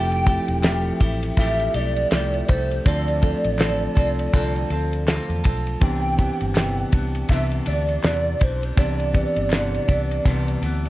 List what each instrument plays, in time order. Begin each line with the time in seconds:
Already playing: fingered electric bass F1, tine electric piano F3 A3 C4 E4 G4, clean electric guitar F3 A3 E4 G4, soft synth lead G5
0.12 ride
0.25 tine electric piano F3 A3 C4 E4 G4, clean electric guitar E4 G4, kick, ride
0.29 clean electric guitar A3
0.48 fingered electric bass E1, ride
0.63 clean electric guitar F3 A3 E4 G4, snare, clap, ride
1.00 fingered electric bass A1, clean electric guitar A3 E4 G4, kick, ride
1.23 ride
1.37 fingered electric bass A1, clean electric guitar F3 A3 E4 G4, soft synth lead E5, kick, snare, ride
1.60 ride
1.74 fingered electric bass B1, clean electric guitar A3 E4 G4, soft synth lead D5, ride
1.96 ride
2.11 fingered electric bass C2, clean electric guitar F3 A3 E4 G4, snare, clap, ride
2.34 ride
2.48 fingered electric bass C2, clean electric guitar E4 G4, soft synth lead C5, kick, ride
2.52 clean electric guitar A3
2.71 ride
2.85 fingered electric bass D2, clean electric guitar D3 C4 F4 A4, tine electric piano F3 A3 C4 D4 A4, soft synth lead D5, kick, ride
3.08 ride
3.22 tine electric piano F3 A3 C4 D4 A4, clean electric guitar C4 F4 A4, kick, ride
3.44 fingered electric bass A1, ride
3.58 clean electric guitar D3 C4 F4 A4, snare, clap, ride
3.95 fingered electric bass C2, clean electric guitar C4 F4 A4, kick, ride
4.19 ride
4.33 fingered electric bass C2, clean electric guitar D3 C4 F4 A4, kick, ride
4.56 ride
4.70 fingered electric bass D2, clean electric guitar C4 F4 A4, ride
4.93 ride
5.07 clean electric guitar D3 C4 F4 A4, snare, clap, ride
5.29 fingered electric bass E2, ride
5.44 fingered electric bass B1, clean electric guitar C4 F4 A4, kick, ride
5.67 ride
5.80 fingered electric bass C2, clean electric guitar C3 E3 B3 D4, tine electric piano E3 B3 C4 D4 G4, soft synth lead G5, kick, ride
6.17 tine electric piano E3 B3 C4 D4 G4, clean electric guitar E3 B3 D4, kick, ride
6.41 fingered electric bass G1, ride
6.55 clean electric guitar C3 E3 B3 D4, snare, clap, ride
6.92 fingered electric bass C2, clean electric guitar E3 B3 D4, kick, ride
7.15 ride
7.28 fingered electric bass C2, clean electric guitar C3 E3 B3 D4, soft synth lead E5, kick, snare, ride
7.51 ride
7.66 fingered electric bass D2, clean electric guitar E3 B3 D4, soft synth lead D5, ride
7.88 ride
8.03 fingered electric bass E2, clean electric guitar C3 E3 B3 D4, snare, clap, ride
8.39 fingered electric bass B1, clean electric guitar E3 D4, soft synth lead C5, kick, ride
8.63 ride
8.76 fingered electric bass C2, clean electric guitar C3 E3 B3 D4, tine electric piano E3 B3 C4 D4 G4, soft synth lead D5, kick, ride
9.00 ride
9.13 tine electric piano E3 B3 C4 D4 G4, clean electric guitar E3 B3 D4, kick, ride
9.36 fingered electric bass G1, ride
9.50 clean electric guitar C3 E3 B3 D4, snare, clap, ride
9.75 ride
9.88 fingered electric bass C2, clean electric guitar E3 B3 D4, kick, ride
10.11 ride
10.25 fingered electric bass C2, clean electric guitar C3 E3 B3 D4, kick, ride
10.48 ride
10.62 fingered electric bass D2, clean electric guitar E3 B3 D4, ride
10.85 ride